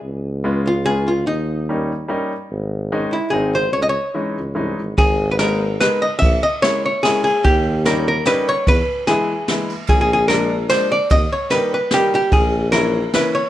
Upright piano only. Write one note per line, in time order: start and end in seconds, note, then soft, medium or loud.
0.44 0.67 G#3 medium
0.44 0.67 B3 medium
0.44 0.67 C#4 medium
0.44 0.67 F4 medium
0.85 1.08 G#3 soft
0.85 1.09 B3 soft
0.85 1.09 C#4 soft
0.85 1.09 F4 medium
1.69 1.91 G3 medium
1.69 1.91 A#3 medium
1.69 1.91 C#4 medium
1.69 1.92 D#4 medium
2.08 2.31 G3 medium
2.08 2.31 A#3 medium
2.08 2.32 C#4 medium
2.08 2.32 D#4 medium
2.92 3.14 D#3 medium
2.92 3.14 G#3 medium
2.92 3.14 C#4 medium
2.92 3.14 D#4 medium
3.32 3.55 D#3 medium
3.32 3.55 G#3 soft
3.32 3.55 C4 soft
3.32 3.55 D#4 medium
4.14 4.37 E3 soft
4.14 4.37 G#3 medium
4.14 4.38 C#4 soft
4.14 4.38 D#4 medium
4.55 4.78 E3 medium
4.55 4.79 G#3 soft
4.55 4.79 C#4 soft
4.55 4.79 D#4 medium
5.39 5.62 G#3 medium
5.39 5.62 A#3 soft
5.39 5.62 B3 medium
5.39 5.63 D#4 medium
5.80 6.03 G#3 medium
5.80 6.03 A#3 soft
5.80 6.03 B3 medium
5.80 6.04 D#4 soft
6.63 6.85 G#3 medium
6.63 6.85 A#3 soft
6.63 6.85 C#4 soft
6.63 6.85 E4 medium
7.04 7.26 G#3 medium
7.04 7.26 A#3 soft
7.04 7.26 C#4 medium
7.04 7.27 E4 medium
7.86 8.08 G3 medium
7.86 8.08 A#3 medium
7.86 8.08 C#4 medium
7.86 8.08 D#4 medium
8.26 8.48 G3 medium
8.26 8.48 A#3 medium
8.26 8.49 C#4 medium
8.26 8.49 D#4 medium
9.08 9.30 E3 medium
9.08 9.30 G#3 medium
9.08 9.31 B3 soft
9.08 9.31 E4 medium
9.49 9.71 E3 soft
9.49 9.71 G#3 soft
9.49 9.71 B3 soft
9.49 9.72 E4 medium
10.29 10.52 F3 medium
10.29 10.52 G#3 medium
10.29 10.52 A#3 medium
10.29 10.52 D4 medium
10.70 10.93 F3 soft
10.70 10.93 G#3 medium
10.70 10.93 A#3 soft
10.70 10.93 D4 medium
11.51 11.74 D#3 soft
11.51 11.74 G3 soft
11.51 11.74 A#3 medium
11.51 11.74 D#4 medium
11.93 12.15 D#3 medium
11.93 12.15 G3 medium
11.93 12.15 A#3 medium
11.93 12.15 D#4 medium
12.73 12.95 E3 medium
12.73 12.95 A#3 medium
12.73 12.95 C#4 medium
12.73 12.95 E4 medium
13.14 13.35 E3 medium
13.14 13.36 A#3 soft
13.14 13.36 C#4 medium
13.14 13.36 E4 medium